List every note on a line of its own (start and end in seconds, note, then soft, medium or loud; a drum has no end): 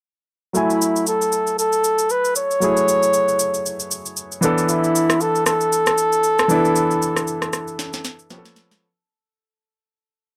0.53 2.57 F#3 medium
0.53 2.58 A3 medium
0.53 2.58 E4 medium
0.53 1.04 E4 medium
0.53 2.59 G#5 medium
0.53 shaker medium
0.70 shaker soft
0.82 shaker medium
0.96 shaker medium
1.07 1.56 A4 medium
1.07 shaker medium
1.22 shaker soft
1.32 shaker medium
1.47 shaker soft
1.59 2.12 A4 medium
1.59 shaker medium
1.72 shaker medium
1.84 shaker medium
1.98 shaker medium
2.10 2.36 B4 loud
2.10 shaker medium
2.25 shaker soft
2.35 3.88 C#5 loud
2.35 shaker loud
2.51 shaker soft
2.60 4.38 F#3 medium
2.60 4.39 A3 medium
2.60 4.40 E4 medium
2.60 4.40 G#4 medium
2.60 shaker medium
2.77 shaker soft
2.88 shaker medium
3.03 shaker medium
3.13 shaker medium
3.28 shaker soft
3.39 shaker medium
3.54 shaker soft
3.66 shaker medium
3.80 shaker medium
3.91 shaker medium
4.06 shaker medium
4.17 shaker medium
4.32 shaker soft
4.41 6.45 E3 medium
4.41 6.45 B3 medium
4.41 6.46 D4 medium
4.41 6.47 A4 medium
4.41 shaker medium
4.58 shaker soft
4.69 5.23 E4 loud
4.69 shaker medium
4.84 shaker soft
4.95 shaker medium
5.10 cross-stick medium
5.10 shaker medium
5.21 5.46 A4 loud
5.21 shaker medium
5.35 shaker soft
5.46 8.27 A4 loud
5.46 cross-stick medium
5.46 shaker medium
5.61 shaker soft
5.72 shaker medium
5.86 cross-stick medium
5.86 shaker medium
5.98 shaker medium
6.13 shaker medium
6.23 shaker medium
6.39 cross-stick medium
6.39 shaker soft
6.48 8.26 E3 medium
6.48 8.27 B3 medium
6.48 8.28 D4 medium
6.48 8.28 E4 medium
6.48 shaker loud
6.65 shaker soft
6.76 shaker medium
6.91 shaker soft
7.02 shaker medium
7.17 cross-stick medium
7.17 shaker medium
7.27 shaker medium
7.42 cross-stick medium
7.42 shaker soft
7.53 cross-stick medium
7.53 shaker medium
7.68 shaker soft
7.79 snare medium
7.79 shaker medium
7.93 snare medium
7.93 shaker medium
8.04 snare medium
8.04 shaker medium
8.19 shaker medium
8.30 8.82 F3 medium
8.30 8.83 B3 medium
8.30 8.83 C#4 medium
8.30 8.39 G4 medium
8.30 snare medium
8.30 shaker medium
8.38 8.86 A4 medium
8.45 snare medium
8.45 shaker soft
8.56 snare medium
8.56 shaker medium
8.71 snare medium
8.71 shaker soft